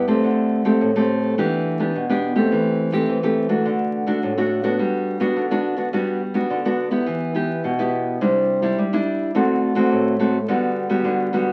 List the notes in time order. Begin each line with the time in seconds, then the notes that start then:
Already playing: G2
0.08 A3 C4 G4
0.24 D3
0.65 A3 C4 G4
0.81 A2
0.96 A3 C4 G4
1.38 E3 B3 D4 G4
1.79 B3 D4 G4
1.95 B2
2.09 B3 D4 G4
2.35 A3 C4 G4
2.52 E3
2.92 A3 C4 G4
3.08 E3
3.23 A3 C4 G4
3.49 A3 D4 F#4
3.65 D3
4.07 A3 D4 F#4
4.23 A2
4.38 A3 D4 F#4
4.63 B3 D4 F#4
4.79 G3
5.20 B3 D4 F#4
5.36 D3
5.51 B3 D4 F#4
5.77 B3 D4 F#4
5.93 G3 B3 D4 F#4
6.34 B3 D4 F#4
6.50 D3
6.65 B3 D4 F#4
6.91 B3 E4 G4
7.06 E3
7.34 B3 E4 G4
7.64 B2
7.79 B3 E4 G4
8.21 C3 G3 D4 E4
8.62 G3 D4 E4
8.79 G3
8.93 G3 D4 E4
9.35 D3 A3 C4 F#4
9.75 A3 C4 F#4
9.92 A2
10.19 A3 C4 F#4
10.48 D3 G3 B3 F#4
10.89 G3 B3 F#4
11.05 D3
11.33 G3 B3 F#4